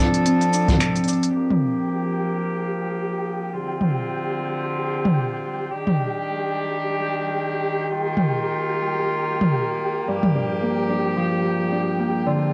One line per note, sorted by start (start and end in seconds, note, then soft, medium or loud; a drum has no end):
0.00 1.33 F3 medium
0.00 5.67 F3 medium
0.00 0.25 C4 medium
0.00 0.53 D4 medium
0.00 1.32 D4 medium
0.00 1.33 A4 medium
0.00 1.91 A4 medium
0.14 open hi-hat soft
0.14 shaker soft
0.26 0.80 C4 medium
0.26 open hi-hat medium
0.26 shaker soft
0.41 open hi-hat soft
0.41 shaker soft
0.53 1.07 D4 medium
0.53 shaker medium
0.68 kick medium
0.68 mid tom medium
0.68 open hi-hat soft
0.68 shaker soft
0.80 3.80 C4 medium
0.80 finger snap loud
0.80 open hi-hat medium
0.80 shaker soft
0.96 open hi-hat soft
0.96 shaker soft
1.04 open hi-hat soft
1.08 5.84 D4 medium
1.08 shaker medium
1.13 open hi-hat soft
1.23 open hi-hat soft
1.23 shaker soft
1.34 3.51 F3 medium
1.34 3.51 A#3 medium
1.34 12.53 G4 medium
1.34 3.51 G4 medium
1.34 12.53 G5 medium
1.51 mid tom soft
3.54 5.70 D3 medium
3.54 5.70 C4 medium
3.54 5.69 F4 medium
3.81 mid tom soft
5.05 mid tom medium
5.71 10.04 D#3 medium
5.71 7.87 D4 medium
5.71 7.87 G4 medium
5.87 mid tom soft
7.90 12.22 A#3 medium
7.90 10.06 F4 medium
8.17 mid tom soft
9.41 mid tom medium
10.07 12.31 G2 medium
10.07 12.24 F3 medium
10.07 12.24 G4 medium
10.23 mid tom medium
10.35 10.89 D4 soft
10.62 11.99 A#3 medium
10.90 11.71 D4 soft
11.17 12.53 F3 medium
11.44 12.53 G4 medium
11.72 12.53 D4 medium
11.99 12.53 A#3 soft
12.25 12.53 D3 medium
12.25 12.53 C4 medium
12.25 12.53 F4 medium